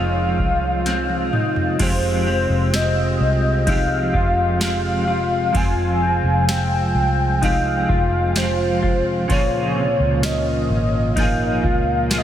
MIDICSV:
0, 0, Header, 1, 7, 480
1, 0, Start_track
1, 0, Key_signature, -4, "minor"
1, 0, Tempo, 937500
1, 920, Time_signature, 4, 2, 24, 8
1, 6262, End_track
2, 0, Start_track
2, 0, Title_t, "Soft synth lead"
2, 0, Program_c, 0, 80
2, 0, Note_on_c, 0, 77, 103
2, 664, Note_off_c, 0, 77, 0
2, 932, Note_on_c, 0, 72, 106
2, 1409, Note_on_c, 0, 75, 105
2, 1417, Note_off_c, 0, 72, 0
2, 1889, Note_on_c, 0, 77, 109
2, 1896, Note_off_c, 0, 75, 0
2, 2361, Note_off_c, 0, 77, 0
2, 2364, Note_on_c, 0, 77, 106
2, 2849, Note_on_c, 0, 80, 112
2, 2856, Note_off_c, 0, 77, 0
2, 3329, Note_on_c, 0, 79, 107
2, 3337, Note_off_c, 0, 80, 0
2, 3807, Note_on_c, 0, 77, 109
2, 3815, Note_off_c, 0, 79, 0
2, 4285, Note_on_c, 0, 72, 106
2, 4293, Note_off_c, 0, 77, 0
2, 4643, Note_off_c, 0, 72, 0
2, 4767, Note_on_c, 0, 73, 99
2, 5247, Note_on_c, 0, 75, 97
2, 5254, Note_off_c, 0, 73, 0
2, 5726, Note_on_c, 0, 77, 101
2, 5733, Note_off_c, 0, 75, 0
2, 6203, Note_off_c, 0, 77, 0
2, 6205, Note_on_c, 0, 77, 106
2, 6237, Note_on_c, 0, 75, 89
2, 6245, Note_off_c, 0, 77, 0
2, 6262, Note_off_c, 0, 75, 0
2, 6262, End_track
3, 0, Start_track
3, 0, Title_t, "Clean electric guitar"
3, 0, Program_c, 1, 27
3, 0, Note_on_c, 1, 65, 73
3, 439, Note_on_c, 1, 60, 74
3, 440, Note_off_c, 1, 65, 0
3, 679, Note_off_c, 1, 60, 0
3, 681, Note_on_c, 1, 63, 67
3, 920, Note_on_c, 1, 65, 89
3, 921, Note_off_c, 1, 63, 0
3, 1160, Note_off_c, 1, 65, 0
3, 1162, Note_on_c, 1, 60, 73
3, 1392, Note_off_c, 1, 60, 0
3, 1399, Note_on_c, 1, 60, 82
3, 1876, Note_off_c, 1, 60, 0
3, 1878, Note_on_c, 1, 63, 81
3, 2119, Note_off_c, 1, 63, 0
3, 2119, Note_on_c, 1, 65, 77
3, 2592, Note_off_c, 1, 65, 0
3, 2598, Note_on_c, 1, 65, 76
3, 2832, Note_off_c, 1, 65, 0
3, 2838, Note_on_c, 1, 65, 94
3, 3077, Note_on_c, 1, 60, 75
3, 3079, Note_off_c, 1, 65, 0
3, 3314, Note_off_c, 1, 60, 0
3, 3320, Note_on_c, 1, 60, 80
3, 3797, Note_off_c, 1, 60, 0
3, 3799, Note_on_c, 1, 63, 81
3, 4040, Note_off_c, 1, 63, 0
3, 4040, Note_on_c, 1, 65, 75
3, 4512, Note_off_c, 1, 65, 0
3, 4518, Note_on_c, 1, 65, 77
3, 4751, Note_off_c, 1, 65, 0
3, 4757, Note_on_c, 1, 65, 91
3, 4996, Note_on_c, 1, 48, 72
3, 4999, Note_off_c, 1, 65, 0
3, 5236, Note_on_c, 1, 61, 79
3, 5238, Note_off_c, 1, 48, 0
3, 5713, Note_off_c, 1, 61, 0
3, 5715, Note_on_c, 1, 63, 83
3, 5955, Note_on_c, 1, 65, 77
3, 5958, Note_off_c, 1, 63, 0
3, 6262, Note_off_c, 1, 65, 0
3, 6262, End_track
4, 0, Start_track
4, 0, Title_t, "Clean electric guitar"
4, 0, Program_c, 2, 27
4, 0, Note_on_c, 2, 53, 48
4, 0, Note_on_c, 2, 56, 53
4, 0, Note_on_c, 2, 60, 51
4, 0, Note_on_c, 2, 65, 60
4, 438, Note_off_c, 2, 53, 0
4, 440, Note_on_c, 2, 53, 49
4, 444, Note_off_c, 2, 56, 0
4, 446, Note_on_c, 2, 56, 49
4, 448, Note_off_c, 2, 60, 0
4, 450, Note_on_c, 2, 60, 57
4, 454, Note_off_c, 2, 65, 0
4, 456, Note_on_c, 2, 65, 54
4, 915, Note_off_c, 2, 53, 0
4, 917, Note_on_c, 2, 53, 80
4, 919, Note_off_c, 2, 56, 0
4, 921, Note_on_c, 2, 56, 83
4, 924, Note_off_c, 2, 60, 0
4, 926, Note_on_c, 2, 60, 87
4, 927, Note_off_c, 2, 65, 0
4, 929, Note_on_c, 2, 67, 88
4, 1153, Note_off_c, 2, 67, 0
4, 1159, Note_off_c, 2, 53, 0
4, 1159, Note_on_c, 2, 67, 45
4, 1161, Note_off_c, 2, 56, 0
4, 1162, Note_off_c, 2, 60, 0
4, 1168, Note_on_c, 2, 60, 43
4, 1177, Note_on_c, 2, 56, 39
4, 1878, Note_on_c, 2, 53, 59
4, 1880, Note_off_c, 2, 67, 0
4, 1881, Note_off_c, 2, 56, 0
4, 1883, Note_off_c, 2, 60, 0
4, 1883, Note_on_c, 2, 56, 63
4, 1889, Note_on_c, 2, 60, 65
4, 1893, Note_on_c, 2, 67, 70
4, 2351, Note_off_c, 2, 53, 0
4, 2353, Note_on_c, 2, 53, 63
4, 2357, Note_off_c, 2, 56, 0
4, 2359, Note_off_c, 2, 60, 0
4, 2359, Note_on_c, 2, 56, 58
4, 2364, Note_off_c, 2, 67, 0
4, 2365, Note_on_c, 2, 60, 65
4, 2370, Note_on_c, 2, 67, 60
4, 2827, Note_off_c, 2, 53, 0
4, 2829, Note_on_c, 2, 53, 88
4, 2838, Note_off_c, 2, 56, 0
4, 2840, Note_on_c, 2, 56, 84
4, 2843, Note_off_c, 2, 60, 0
4, 2845, Note_off_c, 2, 67, 0
4, 2848, Note_on_c, 2, 60, 84
4, 3794, Note_off_c, 2, 53, 0
4, 3796, Note_on_c, 2, 53, 61
4, 3801, Note_off_c, 2, 56, 0
4, 3801, Note_off_c, 2, 60, 0
4, 3803, Note_on_c, 2, 56, 56
4, 3807, Note_on_c, 2, 60, 68
4, 3811, Note_on_c, 2, 67, 58
4, 4276, Note_off_c, 2, 53, 0
4, 4278, Note_on_c, 2, 53, 62
4, 4283, Note_off_c, 2, 56, 0
4, 4284, Note_off_c, 2, 60, 0
4, 4285, Note_on_c, 2, 56, 64
4, 4286, Note_off_c, 2, 67, 0
4, 4290, Note_on_c, 2, 60, 62
4, 4296, Note_on_c, 2, 67, 63
4, 4750, Note_off_c, 2, 53, 0
4, 4752, Note_on_c, 2, 49, 84
4, 4757, Note_off_c, 2, 56, 0
4, 4759, Note_on_c, 2, 53, 93
4, 4762, Note_off_c, 2, 60, 0
4, 4764, Note_on_c, 2, 58, 79
4, 4768, Note_off_c, 2, 67, 0
4, 4771, Note_on_c, 2, 65, 89
4, 4778, Note_on_c, 2, 68, 80
4, 5712, Note_off_c, 2, 53, 0
4, 5714, Note_on_c, 2, 53, 62
4, 5716, Note_off_c, 2, 49, 0
4, 5718, Note_off_c, 2, 58, 0
4, 5720, Note_on_c, 2, 58, 64
4, 5723, Note_off_c, 2, 65, 0
4, 5725, Note_on_c, 2, 65, 68
4, 5730, Note_off_c, 2, 68, 0
4, 5732, Note_on_c, 2, 68, 66
4, 6193, Note_off_c, 2, 53, 0
4, 6195, Note_on_c, 2, 53, 61
4, 6199, Note_off_c, 2, 58, 0
4, 6201, Note_on_c, 2, 58, 61
4, 6204, Note_off_c, 2, 65, 0
4, 6206, Note_on_c, 2, 65, 62
4, 6208, Note_off_c, 2, 68, 0
4, 6210, Note_on_c, 2, 68, 64
4, 6262, Note_off_c, 2, 53, 0
4, 6262, Note_off_c, 2, 58, 0
4, 6262, Note_off_c, 2, 65, 0
4, 6262, Note_off_c, 2, 68, 0
4, 6262, End_track
5, 0, Start_track
5, 0, Title_t, "Tonewheel organ"
5, 0, Program_c, 3, 16
5, 0, Note_on_c, 3, 48, 57
5, 0, Note_on_c, 3, 53, 49
5, 0, Note_on_c, 3, 56, 59
5, 0, Note_on_c, 3, 65, 59
5, 902, Note_off_c, 3, 56, 0
5, 910, Note_off_c, 3, 48, 0
5, 910, Note_off_c, 3, 65, 0
5, 911, Note_off_c, 3, 53, 0
5, 919, Note_on_c, 3, 48, 72
5, 920, Note_on_c, 3, 65, 61
5, 921, Note_on_c, 3, 67, 80
5, 923, Note_on_c, 3, 56, 65
5, 2821, Note_off_c, 3, 67, 0
5, 4739, Note_off_c, 3, 48, 0
5, 4741, Note_off_c, 3, 56, 0
5, 4758, Note_on_c, 3, 46, 72
5, 4760, Note_on_c, 3, 58, 67
5, 5719, Note_on_c, 3, 70, 74
5, 6262, Note_off_c, 3, 46, 0
5, 6262, Note_off_c, 3, 58, 0
5, 6262, Note_off_c, 3, 65, 0
5, 6262, Note_off_c, 3, 70, 0
5, 6262, End_track
6, 0, Start_track
6, 0, Title_t, "Fingered electric bass"
6, 0, Program_c, 4, 33
6, 0, Note_on_c, 4, 29, 80
6, 186, Note_off_c, 4, 29, 0
6, 201, Note_on_c, 4, 36, 81
6, 660, Note_off_c, 4, 36, 0
6, 920, Note_on_c, 4, 29, 102
6, 1262, Note_off_c, 4, 29, 0
6, 1279, Note_on_c, 4, 29, 92
6, 1622, Note_off_c, 4, 29, 0
6, 1640, Note_on_c, 4, 36, 88
6, 2100, Note_off_c, 4, 36, 0
6, 2121, Note_on_c, 4, 29, 90
6, 2820, Note_off_c, 4, 29, 0
6, 2840, Note_on_c, 4, 29, 102
6, 3182, Note_off_c, 4, 29, 0
6, 3195, Note_on_c, 4, 29, 88
6, 3539, Note_off_c, 4, 29, 0
6, 3556, Note_on_c, 4, 36, 93
6, 4018, Note_off_c, 4, 36, 0
6, 4041, Note_on_c, 4, 29, 102
6, 4761, Note_off_c, 4, 29, 0
6, 4761, Note_on_c, 4, 37, 102
6, 5103, Note_off_c, 4, 37, 0
6, 5119, Note_on_c, 4, 37, 97
6, 5462, Note_off_c, 4, 37, 0
6, 5477, Note_on_c, 4, 32, 85
6, 5938, Note_off_c, 4, 32, 0
6, 5959, Note_on_c, 4, 37, 98
6, 6262, Note_off_c, 4, 37, 0
6, 6262, End_track
7, 0, Start_track
7, 0, Title_t, "Drums"
7, 200, Note_on_c, 9, 36, 79
7, 252, Note_off_c, 9, 36, 0
7, 440, Note_on_c, 9, 42, 58
7, 441, Note_on_c, 9, 38, 45
7, 491, Note_off_c, 9, 42, 0
7, 492, Note_off_c, 9, 38, 0
7, 562, Note_on_c, 9, 48, 46
7, 613, Note_off_c, 9, 48, 0
7, 681, Note_on_c, 9, 45, 72
7, 733, Note_off_c, 9, 45, 0
7, 800, Note_on_c, 9, 43, 68
7, 851, Note_off_c, 9, 43, 0
7, 919, Note_on_c, 9, 49, 92
7, 919, Note_on_c, 9, 51, 66
7, 920, Note_on_c, 9, 36, 107
7, 970, Note_off_c, 9, 49, 0
7, 970, Note_off_c, 9, 51, 0
7, 971, Note_off_c, 9, 36, 0
7, 1401, Note_on_c, 9, 38, 105
7, 1401, Note_on_c, 9, 51, 55
7, 1402, Note_on_c, 9, 54, 69
7, 1452, Note_off_c, 9, 38, 0
7, 1453, Note_off_c, 9, 51, 0
7, 1453, Note_off_c, 9, 54, 0
7, 1879, Note_on_c, 9, 36, 86
7, 1879, Note_on_c, 9, 51, 59
7, 1930, Note_off_c, 9, 36, 0
7, 1930, Note_off_c, 9, 51, 0
7, 2120, Note_on_c, 9, 36, 90
7, 2171, Note_off_c, 9, 36, 0
7, 2359, Note_on_c, 9, 51, 58
7, 2360, Note_on_c, 9, 38, 93
7, 2361, Note_on_c, 9, 54, 60
7, 2411, Note_off_c, 9, 51, 0
7, 2412, Note_off_c, 9, 38, 0
7, 2412, Note_off_c, 9, 54, 0
7, 2840, Note_on_c, 9, 36, 114
7, 2840, Note_on_c, 9, 51, 65
7, 2891, Note_off_c, 9, 36, 0
7, 2891, Note_off_c, 9, 51, 0
7, 3321, Note_on_c, 9, 38, 110
7, 3322, Note_on_c, 9, 51, 58
7, 3322, Note_on_c, 9, 54, 69
7, 3373, Note_off_c, 9, 38, 0
7, 3373, Note_off_c, 9, 51, 0
7, 3373, Note_off_c, 9, 54, 0
7, 3800, Note_on_c, 9, 36, 82
7, 3802, Note_on_c, 9, 51, 54
7, 3851, Note_off_c, 9, 36, 0
7, 3854, Note_off_c, 9, 51, 0
7, 4040, Note_on_c, 9, 36, 91
7, 4092, Note_off_c, 9, 36, 0
7, 4278, Note_on_c, 9, 51, 57
7, 4279, Note_on_c, 9, 38, 98
7, 4280, Note_on_c, 9, 54, 65
7, 4330, Note_off_c, 9, 51, 0
7, 4331, Note_off_c, 9, 38, 0
7, 4331, Note_off_c, 9, 54, 0
7, 4521, Note_on_c, 9, 36, 87
7, 4572, Note_off_c, 9, 36, 0
7, 4760, Note_on_c, 9, 51, 69
7, 4761, Note_on_c, 9, 36, 114
7, 4812, Note_off_c, 9, 36, 0
7, 4812, Note_off_c, 9, 51, 0
7, 5239, Note_on_c, 9, 38, 103
7, 5240, Note_on_c, 9, 51, 55
7, 5240, Note_on_c, 9, 54, 69
7, 5290, Note_off_c, 9, 38, 0
7, 5291, Note_off_c, 9, 51, 0
7, 5291, Note_off_c, 9, 54, 0
7, 5718, Note_on_c, 9, 51, 57
7, 5719, Note_on_c, 9, 36, 91
7, 5769, Note_off_c, 9, 51, 0
7, 5770, Note_off_c, 9, 36, 0
7, 5959, Note_on_c, 9, 36, 96
7, 6010, Note_off_c, 9, 36, 0
7, 6199, Note_on_c, 9, 51, 61
7, 6200, Note_on_c, 9, 38, 96
7, 6200, Note_on_c, 9, 54, 60
7, 6250, Note_off_c, 9, 51, 0
7, 6251, Note_off_c, 9, 38, 0
7, 6251, Note_off_c, 9, 54, 0
7, 6262, End_track
0, 0, End_of_file